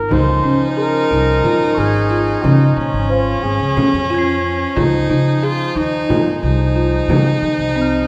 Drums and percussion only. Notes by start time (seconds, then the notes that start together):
0.11 frame drum
1.44 frame drum
2.44 frame drum
3.77 frame drum
4.77 frame drum
6.10 frame drum
7.10 frame drum
7.43 frame drum